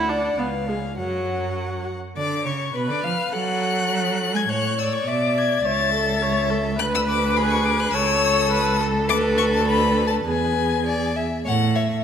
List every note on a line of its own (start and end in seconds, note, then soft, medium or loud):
0.00 0.35 D2 medium
0.00 0.11 E4 medium
0.00 0.41 F#5 medium
0.09 0.38 D4 medium
0.09 0.41 D5 medium
0.38 0.99 C#2 medium
0.38 0.47 B3 medium
0.38 0.71 B4 medium
0.38 0.98 F5 medium
0.68 0.76 G#3 medium
0.68 0.98 G#4 medium
0.98 1.96 F#2 soft
0.98 1.85 F#3 medium
0.98 1.86 F#4 medium
0.98 1.95 F#5 soft
2.16 2.47 D3 medium
2.16 2.44 D5 medium
2.16 2.47 D6 medium
2.45 2.74 C#3 medium
2.45 2.74 C#5 medium
2.45 2.77 C#6 medium
2.74 2.90 B2 medium
2.74 2.81 B4 medium
2.74 3.34 B4 medium
2.74 2.92 B5 medium
2.89 3.03 D3 medium
2.89 3.05 D5 medium
2.89 3.03 D6 medium
3.03 3.11 F3 medium
3.03 3.34 F5 medium
3.03 3.33 F6 medium
3.32 4.35 F#3 medium
3.32 4.49 A4 medium
3.32 4.34 F#5 medium
3.32 4.38 F#6 medium
4.34 4.48 G#3 medium
4.34 4.40 G#5 medium
4.34 4.51 G#6 medium
4.49 5.03 A2 medium
4.49 4.77 C#5 medium
4.49 5.08 C#5 medium
4.49 4.80 F#6 medium
4.78 5.09 D5 medium
4.78 4.94 E6 medium
4.93 5.09 C#6 medium
5.06 5.63 B2 medium
5.06 5.66 D5 medium
5.06 5.65 E5 medium
5.06 5.39 D6 medium
5.37 5.64 G#6 medium
5.64 6.80 C#2 medium
5.64 5.93 C#5 medium
5.64 6.82 E5 medium
5.64 6.49 A6 loud
5.94 6.24 A4 medium
6.22 6.52 C#5 medium
6.50 6.78 A4 medium
6.78 7.93 D2 medium
6.78 7.96 B4 medium
6.78 7.36 B4 medium
6.78 6.85 F#6 loud
6.94 7.00 E6 medium
7.09 7.38 D6 loud
7.36 7.96 G#4 medium
7.36 7.52 B5 loud
7.50 7.66 C#6 loud
7.64 7.81 D6 loud
7.79 7.92 F#6 loud
7.93 9.11 C#2 medium
7.93 9.09 A4 medium
7.93 8.51 C#5 loud
7.93 8.78 E6 loud
8.51 8.82 B4 medium
8.80 10.27 A4 medium
9.09 10.26 D2 medium
9.09 9.67 B4 medium
9.09 9.17 D6 loud
9.38 9.44 C#6 loud
9.54 9.67 A5 loud
9.67 10.26 B4 medium
9.67 10.06 B5 loud
10.07 10.15 A5 medium
10.27 11.24 E2 medium
10.27 11.15 G#4 medium
10.27 10.80 B4 medium
10.27 11.15 G#5 medium
10.86 11.17 D5 medium
11.16 11.44 E5 medium
11.45 11.98 A2 medium
11.45 11.53 C#5 medium
11.45 11.77 F#5 loud
11.75 11.83 C#5 medium
11.75 12.04 E5 medium